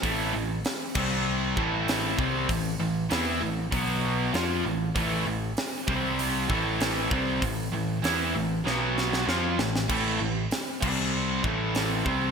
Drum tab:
CC |------x---------|----------------|----------------|----------------|
HH |o---o-------o---|o---o---o---o---|o---o---o---o---|o---o-----------|
SD |----o-------o---|----o-------o---|----o-------o---|----o---o-ooo-oo|
BD |o-----o---o---o-|o-------o-------|o-----o---o---o-|o---------------|

CC |x-----x---------|
HH |----o-------o---|
SD |----o-------o---|
BD |o-----o---o---o-|